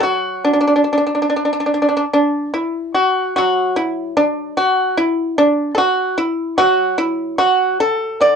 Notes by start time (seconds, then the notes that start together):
0.00 F#3 F#4
0.45 D4
0.53 D4
0.61 D4
0.67 D4
0.76 D4
0.84 D4
0.92 D4
0.97 D4
1.06 D4
1.15 D4
1.22 D4
1.30 D4
1.36 D4
1.45 D4
1.53 D4
1.60 D4
1.66 D4
1.74 D4
1.82 D4
1.89 D4
1.97 D4
2.14 D4
2.54 E4
2.95 F#4
3.36 F#3 F#4
3.76 E4
4.16 D4
4.57 F#4
4.98 E4
5.38 D4
5.75 F#4 A4
6.18 E4
6.58 F#3 F#4
6.98 E4
7.38 F#4
7.80 A4
8.21 D3 D5